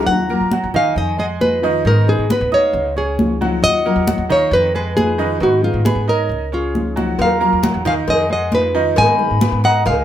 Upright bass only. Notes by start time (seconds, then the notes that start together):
0.07 D#2
0.41 D#2
0.64 D#2
0.96 F2
1.85 G#2
2.18 G#2
2.41 D2
2.73 C#2
3.62 D#2
3.96 D#2
4.18 D#2
4.51 F2
5.40 G#2
5.74 G#2
5.95 G#2
6.29 C#2
7.19 D#2
7.53 D#2
7.74 E2
8.08 F2
8.97 G#2
9.31 G#2
9.52 G#2
9.86 C#2